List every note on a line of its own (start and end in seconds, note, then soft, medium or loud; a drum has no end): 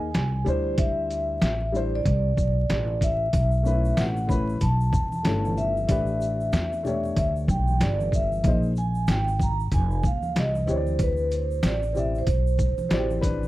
0.00 0.11 D#2 medium
0.00 0.43 G#5 loud
0.14 0.45 C2 loud
0.14 snare loud
0.14 closed hi-hat medium
0.45 1.38 D2 medium
0.45 1.49 G3 medium
0.45 1.50 D4 medium
0.45 1.50 E4 medium
0.45 0.80 C5 medium
0.45 1.51 C5 medium
0.45 shaker medium
0.78 1.77 E5 loud
0.78 kick loud
0.78 closed hi-hat medium
1.10 closed hi-hat medium
1.10 shaker medium
1.42 2.03 A1 medium
1.42 snare loud
1.42 closed hi-hat medium
1.72 1.98 G3 medium
1.72 1.98 D4 medium
1.72 1.99 E4 medium
1.72 1.99 C5 medium
1.72 shaker soft
1.76 1.95 C5 medium
1.96 3.06 D5 medium
2.05 2.36 C2 loud
2.05 kick medium
2.05 closed hi-hat medium
2.37 2.68 B1 medium
2.37 kick medium
2.37 shaker medium
2.69 3.30 A1 medium
2.69 snare loud
2.69 closed hi-hat medium
3.01 4.01 E5 loud
3.01 kick medium
3.01 closed hi-hat medium
3.01 shaker medium
3.33 3.94 B1 loud
3.33 kick loud
3.33 closed hi-hat medium
3.33 shaker medium
3.51 shaker soft
3.63 4.26 A3 medium
3.63 4.27 C#4 medium
3.63 3.74 D#4 soft
3.63 4.30 B4 medium
3.63 shaker soft
3.63 shaker medium
3.72 4.28 E4 medium
3.85 shaker soft
3.97 4.58 A1 loud
3.97 4.31 F#5 loud
3.97 snare loud
3.97 closed hi-hat medium
3.97 shaker medium
4.17 shaker medium
4.27 4.53 A3 medium
4.27 4.53 C#4 medium
4.27 4.54 E4 medium
4.27 4.62 B5 medium
4.27 kick medium
4.27 low conga medium
4.27 shaker soft
4.31 4.55 B4 medium
4.31 shaker medium
4.49 shaker soft
4.61 4.91 B1 medium
4.61 5.60 A5 medium
4.61 kick medium
4.61 closed hi-hat medium
4.61 shaker medium
4.81 shaker soft
4.92 5.23 E2 medium
4.92 kick loud
4.92 low conga medium
4.92 shaker soft
5.12 high conga medium
5.12 shaker soft
5.23 5.86 G1 medium
5.23 5.71 A3 medium
5.23 5.72 C#4 medium
5.23 5.73 E4 medium
5.23 snare loud
5.23 closed hi-hat medium
5.23 shaker medium
5.27 5.73 A4 medium
5.45 high conga medium
5.45 shaker medium
5.57 7.13 E5 medium
5.57 low conga medium
5.57 shaker soft
5.57 shaker medium
5.77 high conga medium
5.77 shaker soft
5.87 6.50 A1 medium
5.87 6.79 A3 medium
5.87 6.79 D4 medium
5.87 6.80 G4 medium
5.87 6.81 B4 medium
5.87 kick loud
5.87 closed hi-hat medium
5.87 shaker medium
6.07 shaker soft
6.20 shaker medium
6.40 shaker soft
6.52 7.13 E2 medium
6.52 snare loud
6.52 closed hi-hat medium
6.52 shaker medium
6.73 shaker medium
6.83 7.75 A3 medium
6.83 7.75 D4 medium
6.83 7.76 G4 medium
6.83 low conga medium
6.83 shaker soft
6.83 shaker medium
6.87 7.77 C#5 medium
7.05 shaker soft
7.17 7.47 D2 medium
7.17 7.32 E5 medium
7.17 kick medium
7.17 closed hi-hat medium
7.17 shaker medium
7.36 shaker soft
7.48 7.79 B1 medium
7.48 7.82 G5 medium
7.48 kick loud
7.48 low conga medium
7.48 shaker medium
7.48 shaker soft
7.68 high conga medium
7.68 shaker soft
7.80 8.41 G1 loud
7.80 8.14 D5 medium
7.80 snare loud
7.80 closed hi-hat medium
7.80 shaker medium
8.00 high conga medium
8.00 shaker medium
8.12 8.47 E5 medium
8.12 kick medium
8.12 low conga medium
8.12 shaker soft
8.12 shaker medium
8.32 high conga medium
8.32 shaker medium
8.43 9.05 A#1 loud
8.43 8.68 A#3 medium
8.43 8.69 D#4 medium
8.43 8.69 G#4 medium
8.43 8.61 D#5 loud
8.43 kick loud
8.43 closed hi-hat medium
8.43 shaker medium
8.48 8.70 C5 medium
8.63 shaker soft
8.76 9.10 G#5 loud
8.76 shaker soft
8.76 shaker medium
8.95 shaker soft
9.07 9.69 G#1 loud
9.07 9.42 G5 medium
9.07 snare loud
9.07 closed hi-hat medium
9.07 shaker medium
9.28 shaker medium
9.40 9.57 A#5 medium
9.40 kick medium
9.40 low conga medium
9.40 shaker soft
9.40 shaker medium
9.60 shaker soft
9.72 10.02 F1 loud
9.72 10.06 G#5 medium
9.72 kick medium
9.72 closed hi-hat medium
9.72 shaker medium
9.91 shaker soft
10.03 10.34 D#2 medium
10.03 10.35 F5 medium
10.03 kick loud
10.03 low conga medium
10.03 shaker soft
10.03 shaker medium
10.22 high conga medium
10.22 shaker soft
10.36 10.66 C2 medium
10.36 10.70 D#5 medium
10.36 snare loud
10.36 closed hi-hat medium
10.36 shaker medium
10.55 high conga medium
10.55 shaker soft
10.66 11.59 D2 loud
10.66 11.70 C4 medium
10.66 11.71 E4 medium
10.66 11.72 G4 medium
10.66 10.77 C#5 medium
10.66 low conga soft
10.66 shaker soft
10.66 shaker medium
10.71 11.02 C5 medium
10.76 11.75 D5 medium
10.87 high conga medium
10.87 shaker medium
10.99 11.34 B4 medium
10.99 kick loud
10.99 closed hi-hat medium
10.99 shaker medium
11.17 shaker soft
11.31 11.66 C5 medium
11.31 closed hi-hat medium
11.31 shaker medium
11.51 shaker soft
11.63 12.24 A1 medium
11.63 11.94 D5 medium
11.63 snare loud
11.63 closed hi-hat medium
11.63 shaker medium
11.83 shaker soft
11.93 12.18 C4 medium
11.93 12.19 E4 medium
11.93 12.20 G4 medium
11.93 low conga medium
11.93 shaker soft
11.97 12.21 D5 medium
11.97 12.17 E5 medium
11.97 shaker medium
12.15 13.08 C5 medium
12.15 shaker soft
12.27 12.76 B1 medium
12.27 kick medium
12.27 closed hi-hat medium
12.27 shaker medium
12.47 shaker soft
12.59 kick medium
12.59 low conga medium
12.59 shaker medium
12.59 shaker soft
12.78 muted upright bass stroke soft
12.78 high conga medium
12.78 shaker soft
12.89 13.48 A1 medium
12.89 13.37 C4 medium
12.89 13.38 E4 medium
12.89 12.99 F#4 medium
12.89 snare loud
12.89 closed hi-hat medium
12.89 shaker medium
12.93 13.39 D5 medium
12.98 13.42 G4 medium
13.11 high conga medium
13.11 shaker soft
13.21 13.48 D4 medium
13.21 13.48 B4 medium
13.21 kick medium
13.21 closed hi-hat medium
13.21 low conga medium
13.21 shaker soft
13.21 shaker medium
13.43 high conga soft
13.43 shaker medium